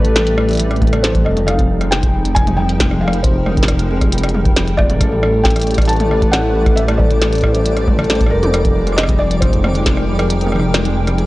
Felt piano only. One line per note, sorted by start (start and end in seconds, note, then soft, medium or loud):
0.00 0.77 B4 loud
1.03 1.26 C5 medium
1.25 1.48 D#5 medium
1.47 1.93 F5 loud
1.91 2.37 G5 loud
2.35 2.58 G#5 loud
2.57 3.03 G5 loud
3.01 3.24 F5 loud
3.23 4.08 C5 medium
4.77 5.19 D5 loud
5.44 5.90 G5 loud
5.88 6.34 A5 loud
6.31 6.78 F#5 loud
6.76 6.81 E5 loud
6.98 7.83 D5 medium
8.30 8.99 A#4 loud
8.97 9.20 D#5 loud
9.19 9.42 D5 loud
9.41 11.26 C5 medium